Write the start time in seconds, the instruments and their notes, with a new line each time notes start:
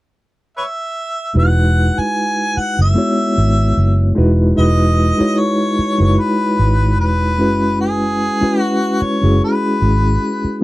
0.57 harmonica B4 C#5 E5
1.34 fingered electric bass E1, reed electric piano G#3 D#4 E4 F#4 B4
1.39 harmonica F#5
1.98 harmonica G#5, muted fingered electric bass stroke
2.57 harmonica F#5, muted fingered electric bass stroke
2.79 fingered electric bass F#1, harmonica E5
2.94 reed electric piano G#3 B3 E4 F#4 C#5
3.38 fingered electric bass G#1
3.77 fingered electric bass F#1
4.15 fingered electric bass E1, reed electric piano G#3 D#4 E4 F#4 B4
4.56 fingered electric bass E1, reed electric piano G#3 D#4 E4 F#4 B4, harmonica D#5
5.18 reed electric piano G#3 D#4 E4 F#4 C#5, muted fingered electric bass stroke
5.39 harmonica C#5
5.79 muted fingered electric bass stroke
5.98 fingered electric bass F#1, reed electric piano G#3 D#4 E4 F#4 B4
6.20 harmonica B4
6.59 fingered electric bass G#1
6.99 fingered electric bass E1, harmonica B4
7.38 fingered electric bass F#1, reed electric piano G#3 C#4 E4 F#4 B4
7.81 harmonica G#4
8.41 reed electric piano G#3 C#4 E4 F#4 B4, muted fingered electric bass stroke
8.61 harmonica F#4
9.02 harmonica C#5, muted fingered electric bass stroke
9.21 fingered electric bass F#1, reed electric piano G#3 C#4 E4 F#4 G#4
9.44 harmonica B4
9.82 fingered electric bass G#1
10.44 muted fingered electric bass stroke
10.61 reed electric piano F#3